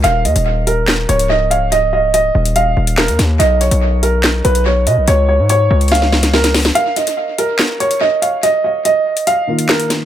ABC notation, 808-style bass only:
X:1
M:4/4
L:1/16
Q:1/4=143
K:Dbmix
V:1 name="808-style bass" clef=bass
E,,,2 E,, E,,,6- E,,, D,,,6- | D,,,6 E,,,4 E,,,3 E,, E,,2 | =B,,,3 B,,,6- B,,, B,,,4 =B,, B,,, | D,,3 A,,3 D,,8- D,,2 |
z16 | z16 |]